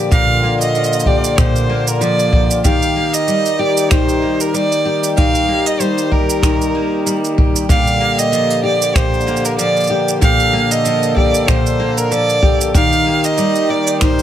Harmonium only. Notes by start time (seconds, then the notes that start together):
Already playing: D3 A#3
0.11 F4
2.65 D#3 D#4 G4
7.70 D3 A#3 G4
10.22 A4
12.75 D#3 D#4 G4